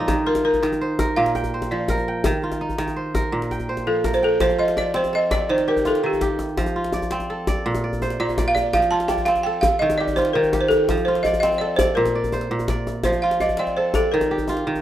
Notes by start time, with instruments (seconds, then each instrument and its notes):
Already playing: kora A#2 F3 D4 F4 G4 A4 C5
0.00 kora D#4
0.08 kora D#3, djembe slap, djembe tone, djembe bass
0.26 kora F4, balafon A#4
0.35 djembe slap, djembe tone
0.45 kora D#4, balafon A#4
0.54 djembe slap, djembe bass
0.63 kora D#3, djembe slap
0.72 djembe slap, djembe tone
0.81 kora C5
0.91 djembe slap
0.99 kora A#4, djembe slap, djembe tone, djembe bass
1.16 kora A#2, balafon F5
1.26 djembe slap
1.35 kora G5, djembe tone
1.44 djembe bass
1.54 kora C5
1.62 djembe slap, djembe tone
1.71 kora F3, balafon D5, djembe slap
1.88 kora A#4, djembe slap, djembe bass
1.98 djembe tone
2.08 kora G5
2.24 kora D#3, djembe slap, djembe tone, djembe bass
2.33 djembe slap
2.42 kora F4, djembe slap
2.52 djembe slap, djembe tone
2.61 kora D#4
2.69 djembe slap, djembe bass
2.78 kora D#3, djembe slap
2.88 djembe tone
2.96 kora C5
3.06 djembe slap
3.14 kora A#4, djembe slap, djembe tone, djembe bass
3.32 kora A#2, djembe slap
3.42 djembe slap
3.51 kora G5, djembe tone
3.59 djembe slap, djembe bass
3.69 kora C5, djembe slap
3.77 djembe slap, djembe tone
3.86 kora F3, balafon A4, djembe slap
3.96 djembe slap
4.04 kora A#4, djembe slap, djembe bass
4.13 balafon C5, djembe slap, djembe tone
4.23 balafon A4, kora G5
4.32 djembe slap
4.40 kora F3, balafon C5, djembe slap, djembe bass
4.50 djembe slap, djembe tone
4.58 kora F4, balafon D#5
4.68 djembe slap
4.77 kora D5, balafon D5, djembe slap, djembe tone
4.86 djembe slap
4.94 kora C4, balafon C5, djembe slap
5.04 djembe tone
5.13 kora A4, balafon D#5
5.31 kora D5, balafon D5, djembe slap, djembe tone, djembe bass
5.49 kora D#3, balafon C5
5.58 djembe slap
5.68 kora G4, balafon A#4
5.77 djembe bass
5.85 kora F4, balafon A4, djembe tone
5.95 djembe slap
6.03 kora D#3, balafon G4
6.13 djembe tone
6.21 kora G4, djembe slap, djembe bass
6.39 djembe tone
6.49 djembe slap
6.57 kora F3, djembe slap, djembe bass
6.66 djembe slap, djembe tone
6.76 kora F4
6.84 djembe slap
6.92 kora D5, djembe slap, djembe tone
7.02 djembe slap, djembe bass
7.11 kora C4, djembe slap
7.20 djembe tone
7.30 kora A4
7.47 kora D5, djembe slap, djembe tone, djembe bass
7.66 kora A#2
7.75 djembe slap, djembe tone
7.84 kora D5
7.93 djembe bass
8.02 kora C5, djembe tone
8.10 djembe slap
8.20 kora A#2, balafon D5
8.29 djembe tone
8.38 kora D5, djembe slap, djembe bass
8.48 balafon F5
8.55 balafon D5, djembe tone
8.65 djembe slap
8.73 kora F3, balafon F5, djembe slap, djembe bass
8.82 djembe slap, djembe tone
8.91 kora F4, balafon A5
9.00 djembe slap
9.08 kora D5, balafon G5, djembe slap, djembe tone
9.18 djembe slap, djembe bass
9.25 kora C4, balafon F5, djembe slap
9.36 djembe tone
9.43 kora A4, balafon G5
9.61 balafon F5, djembe slap, djembe tone, djembe bass
9.79 kora D#3, balafon D#5
9.90 djembe slap, djembe tone
9.98 kora G4, balafon D5
10.07 djembe bass
10.16 kora F4, balafon C5, djembe tone
10.25 djembe slap
10.33 kora D#3, balafon A#4
10.43 djembe tone
10.53 kora G4, djembe slap, djembe bass
10.61 balafon C5
10.68 balafon A4, djembe tone
10.80 djembe slap
10.89 kora F3, djembe slap, djembe bass
10.97 djembe tone
11.05 kora F4, balafon C5, djembe slap
11.15 djembe slap
11.23 kora D5, balafon D#5, djembe tone
11.33 djembe bass
11.40 kora C4, balafon D#5, djembe slap
11.52 djembe tone
11.58 kora A4, balafon D5, djembe slap
11.76 balafon C5, kora D5, djembe slap, djembe tone, djembe bass
11.88 djembe slap
11.95 kora A#2, balafon A#4, djembe slap
12.05 djembe slap, djembe tone
12.15 kora D5, djembe slap
12.24 djembe bass
12.32 kora C5, djembe tone
12.41 djembe slap
12.51 kora A#2
12.59 djembe slap, djembe tone
12.68 kora D5, djembe slap, djembe bass
12.87 djembe tone
12.96 djembe slap
13.03 kora F3, balafon C5, djembe slap, djembe bass
13.13 djembe slap, djembe tone
13.22 kora F4, balafon F5
13.31 djembe slap
13.40 kora D5, balafon D#5, djembe slap, djembe tone
13.49 djembe slap, djembe bass
13.57 kora C4, balafon D5, djembe slap
13.67 djembe tone
13.77 kora A4, balafon C5
13.94 balafon A4, kora D5, djembe slap, djembe tone, djembe bass
14.12 kora D#3, balafon A#4
14.21 djembe slap, djembe tone
14.31 kora G4
14.38 djembe bass
14.48 kora F4, djembe tone
14.57 djembe slap
14.67 kora D#3
14.75 djembe tone